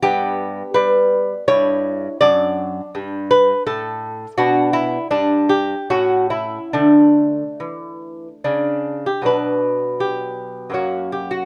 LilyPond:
<<
  \new Staff \with { instrumentName = "Lute" } { \time 3/4 \key d \major \tempo 4 = 80 << { g'4 b'4 cis''4 | d''4. b'8 a'4 | fis'8 e'8 d'8 g'8 fis'8 e'8 | d'2 d'8. g'16 |
\key b \minor b'4 g'4 fis'8 g'16 fis'16 | } \\ { b2 e'4 | d'2. | d'4 r4 cis'4 | a2. |
<b, fis d'>2 <fis, ais cis'>4 | } >> }
  \new Staff \with { instrumentName = "Lute" } { \clef bass \time 3/4 \key d \major g,4 g4 g,4 | fis,4 g,4 a,4 | b,4 g,4 a,4 | d4 e4 cis4 |
\key b \minor r2. | }
>>